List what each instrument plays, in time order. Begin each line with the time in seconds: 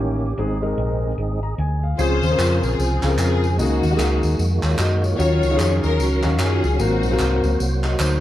Already playing: fingered electric bass A1, grand piano D#3 C#4 D#4 E4 G4, tonewheel organ A#3 C#4 G4
0.38 fingered electric bass G#1, grand piano G#2 G#3 C4 D#4 G#4, tonewheel organ C4 D#4 G#4
0.62 grand piano G#3 C4 D#4 A#4, tonewheel organ G#3 C4 D#4
0.78 fingered electric bass A#1
1.18 fingered electric bass G#1, tonewheel organ G#3 C4 D#4
1.43 grand piano A#5
1.58 fingered electric bass D2, grand piano G#5
1.83 grand piano F5
1.99 fingered electric bass C#2, tonewheel organ C#3 F3 G#4 C5, grand piano C#3 C4 C#4 F4 G#4, string section F4 G#4 C5, tambourine
2.23 fingered electric bass D#2, tambourine
2.30 grand piano C4 C#4 F4 A#4
2.38 fingered electric bass F2, clap, tambourine
2.62 fingered electric bass A#1, string section C4 F4 G#4, tambourine
2.79 fingered electric bass C2, tambourine
3.03 fingered electric bass C#2, grand piano C#3 C4 F4 G#4, clap, tambourine
3.09 grand piano A#4
3.18 fingered electric bass F2, string section C4 F4 G#4, clap, tambourine
3.44 tambourine
3.58 fingered electric bass C#2, grand piano C#3 A#3 D#4 F#4 G#4, tonewheel organ D#3 G#3 A#3 F#4, string section A#3 D#4 F#4, tambourine
3.83 fingered electric bass D#2, tambourine
3.90 grand piano A#3 D#4 F#4 G4
3.97 fingered electric bass C#2, grand piano G#4, clap, tambourine
4.23 fingered electric bass D#2, tambourine
4.39 fingered electric bass F2, tambourine
4.63 fingered electric bass D#2, grand piano F4 C#5, clap, tambourine
4.78 fingered electric bass F#2, grand piano F#4 D#5, clap, tambourine
5.03 grand piano F4 C#5, tambourine
5.18 fingered electric bass D#2, grand piano D#3 C#4 D#4 F4 F#4, tonewheel organ F#3 C#4 F5, string section F4 F#4 C#5, tambourine
5.43 fingered electric bass C#2, tambourine
5.50 grand piano C#4 D#4 F#4 F5
5.56 fingered electric bass F2, grand piano G#4, clap, tambourine
5.84 fingered electric bass D#2, string section C#4 F#4 A#4, tambourine
5.99 fingered electric bass C#2, tambourine
6.23 fingered electric bass D#2, grand piano C#4 D#4 F#4 F5, clap, tambourine
6.39 fingered electric bass F#2, string section C#4 F4 G#4, clap, tambourine
6.64 fingered electric bass C#2, tambourine
6.79 fingered electric bass G#1, grand piano G#2 C4 F4 F#4 A#4, tonewheel organ F#3 A#3 F#4 C5, string section A#3 C4 F#4, tambourine
7.03 fingered electric bass A#1, tambourine
7.11 grand piano C4 F#4 A#4 F5
7.19 fingered electric bass C2, clap, tambourine
7.44 fingered electric bass C#2, tambourine
7.60 fingered electric bass C2, tambourine
7.84 grand piano F#4 D#5, clap, tambourine
7.99 fingered electric bass D2, grand piano D#4 C5, clap, tambourine